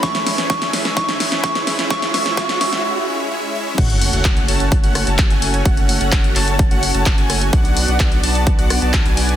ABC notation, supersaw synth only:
X:1
M:4/4
L:1/16
Q:1/4=128
K:F#m
V:1 name="Supersaw synth"
[G,CEce]3 [G,CEce] [G,CEce]3 [G,CEce] [G,CEce]3 [G,CEce] [G,CEce]3 [G,CEce] | [G,CEce]2 [G,CEce]2 [G,CEce]2 [G,CEce]2 [G,CEce]2 [G,CEce]2 [G,CEce]2 [G,CEce]2 | [A,CFcf]3 [A,CFcf]3 [A,CFca]2 z [A,CFcf]2 [A,CFca]2 [A,CFcg]3 | [A,CFcf]3 [A,CFcf]3 [A,CFca]2 z [A,CFcf]2 [A,CFca]2 [A,CFcg]3 |
[B,DFdf]3 [B,DFdf]3 [B,DFda]2 z [B,DFdf]2 [B,DFda]2 [B,DFdg]3 |]